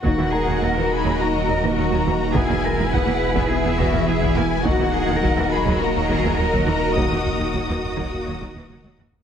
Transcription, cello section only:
X:1
M:4/4
L:1/8
Q:1/4=104
K:Ebphr
V:1 name="Cello section"
G A B A G B G2 | ^G B =B2 G _G ^G =E | G A B A G A B2 | G6- G z |]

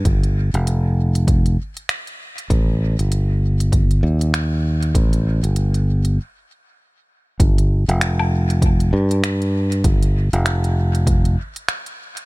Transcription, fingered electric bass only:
X:1
M:4/4
L:1/16
Q:"Swing 16ths" 1/4=98
K:Fmix
V:1 name="Fingered electric bass" clef=bass
G,,,3 F,,,6- F,,, z6 | A,,,3 G,,,6- G,,, E,,6 | A,,,3 G,,,4- G,,, z8 | G,,,3 F,,,6- F,,, G,,6 |
G,,,3 F,,,6- F,,, z6 |]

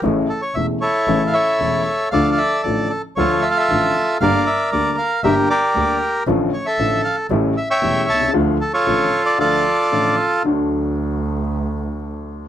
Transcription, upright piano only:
X:1
M:4/4
L:1/16
Q:1/4=115
K:Dm
V:1 name="Upright piano" clef=bass
[A,,,A,,^C,E,A,E]2 z2 [E,,,E,,C,E,A,E]2 z2 [A,,,A,,C,E,A,E]2 z2 [E,,,E,,C,E,A,E]2 z2 | [D,,D,F,A,F]2 z2 [A,,,A,,D,F,A,F]2 z2 [D,,D,F,A,F]2 z2 [A,,,A,,D,F,A,F]2 z2 | [G,,,G,,D,G,B,G]2 z2 [D,,D,G,B,G]2 z2 [G,,,G,,D,G,B,G]2 z2 [D,,D,G,B,G]2 z2 | [A,,,A,,D,F,A,F]2 z2 [A,,,A,,D,F,A,F]2 z2 [A,,,A,,^C,G,A,E]2 z2 [E,,,E,,C,G,A,E]2 z/2 =B,,,/2 =C,,/2 ^C,,/2 |
[D,,D,F,A,F]2 z2 [A,,,A,,D,F,A,F]2 z2 [D,,D,F,A,F]2 z2 [A,,,A,,D,F,A,F]2 z2 | [K:D] [D,,D,F,A,F]16 |]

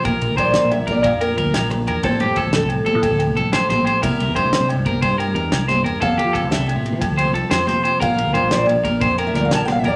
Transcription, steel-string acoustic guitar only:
X:1
M:12/8
L:1/16
Q:3/8=121
K:F
V:1 name="Steel-string acoustic guitar"
z4 d4 e2 d2 f2 B4 z6 | c6 A6 z12 | e6 c6 z12 | f6 e6 z12 |
f6 d6 z3 e d f a g f e d z |]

